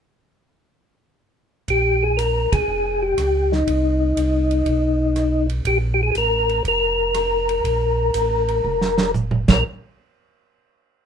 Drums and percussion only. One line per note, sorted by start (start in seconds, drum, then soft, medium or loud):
1.68 kick soft
1.68 ride medium
2.19 hi-hat pedal medium
2.19 ride medium
2.53 kick medium
2.53 ride medium
3.18 cross-stick soft
3.18 hi-hat pedal soft
3.18 ride medium
3.52 snare soft
3.67 kick soft
3.67 ride medium
4.17 hi-hat pedal soft
4.17 ride medium
4.51 ride soft
4.66 kick soft
4.66 ride soft
5.16 cross-stick soft
5.16 hi-hat pedal soft
5.16 ride soft
5.50 ride soft
5.65 kick soft
5.65 ride medium
6.15 hi-hat pedal soft
6.15 ride soft
6.49 ride soft
6.65 kick soft
6.65 ride soft
7.14 cross-stick medium
7.14 hi-hat pedal soft
7.14 ride medium
7.49 ride soft
7.64 kick soft
7.64 ride medium
8.14 hi-hat pedal medium
8.14 ride medium
8.48 ride soft
8.65 high tom soft
8.81 snare soft
8.98 snare medium
9.14 hi-hat pedal soft
9.14 mid tom soft
9.31 mid tom medium
9.48 kick medium
9.48 snare medium
9.48 crash medium